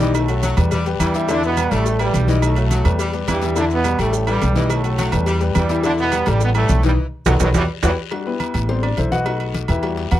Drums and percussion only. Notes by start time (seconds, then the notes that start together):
0.00 cowbell, high conga, short guiro, maracas
0.15 cowbell, low agogo, long guiro, maracas
0.28 high conga, low agogo, maracas
0.43 cowbell, high conga, low agogo, short guiro, maracas
0.57 cowbell, high conga, low conga, low agogo, short guiro, maracas
0.71 cowbell, high conga, low conga, low agogo, long guiro, maracas
0.86 cowbell, maracas
1.00 cowbell, high conga, low agogo, short guiro, maracas
1.14 cowbell, high conga, short guiro, maracas
1.28 cowbell, high conga, low agogo, long guiro, maracas
1.43 high conga, maracas
1.57 cowbell, high conga, low agogo, short guiro, maracas
1.71 cowbell, low agogo, short guiro, maracas
1.85 cowbell, high conga, long guiro, maracas
1.99 high conga, low agogo, maracas
2.14 cowbell, high conga, low agogo, short guiro, maracas
2.28 cowbell, high conga, short guiro, maracas
2.42 cowbell, high conga, low agogo, long guiro, maracas
2.56 low agogo, maracas
2.71 cowbell, high conga, low agogo, short guiro, maracas
2.85 cowbell, high conga, low conga, low agogo, short guiro, maracas
2.99 cowbell, high conga, low agogo, long guiro, maracas
3.13 cowbell, high conga, maracas
3.28 cowbell, high conga, low timbale, low agogo, short guiro, maracas
3.42 cowbell, high conga, short guiro, maracas
3.56 cowbell, high conga, low agogo, long guiro, maracas
3.71 high conga, maracas
3.84 cowbell, high conga, low agogo, short guiro, maracas
3.99 cowbell, high conga, low agogo, short guiro, maracas
4.13 cowbell, high conga, long guiro, maracas
4.27 high conga, low agogo, maracas
4.42 cowbell, high conga, low timbale, low agogo, short guiro, maracas
4.56 cowbell, high conga, short guiro, maracas
4.70 cowbell, high conga, low agogo, long guiro, maracas
4.84 high conga, low agogo, maracas
4.98 cowbell, high conga, low agogo, short guiro, maracas
5.12 cowbell, high conga, low conga, low agogo, short guiro, maracas
5.26 cowbell, high conga, low agogo, long guiro, maracas
5.41 cowbell, maracas
5.55 cowbell, high conga, low timbale, low agogo, short guiro, maracas
5.69 cowbell, high conga, short guiro, maracas
5.84 cowbell, high conga, low agogo, long guiro, maracas
5.98 high conga, maracas
6.12 cowbell, high conga, low agogo, short guiro, maracas
6.26 cowbell, low agogo, short guiro, maracas
6.41 cowbell, long guiro, maracas
6.55 high conga, low agogo, maracas
6.69 cowbell, high conga, low timbale, low agogo, short guiro, maracas
6.83 cowbell, high conga, short guiro, maracas
7.26 cowbell, high conga, high timbale, long guiro, maracas
7.40 cowbell, high conga, high timbale, long guiro, maracas
7.54 cowbell, high conga, high timbale, long guiro, maracas
7.83 cowbell, high conga, high timbale, long guiro, maracas
8.11 cowbell, high conga, low agogo, long guiro
8.26 high conga
8.40 cowbell, high conga, low agogo, short guiro
8.54 cowbell, low agogo, short guiro
8.69 cowbell, high conga, long guiro
8.83 high conga, low agogo
8.97 cowbell, high conga, low agogo, short guiro
9.12 cowbell, high conga, short guiro
9.26 cowbell, high conga, low agogo, long guiro
9.40 high conga, low agogo
9.54 cowbell, high conga, low agogo, short guiro
9.68 cowbell, high conga, low conga, low agogo, short guiro
9.83 cowbell, high conga, low agogo, long guiro
9.97 cowbell, high conga
10.11 cowbell, high conga, low timbale, low agogo, short guiro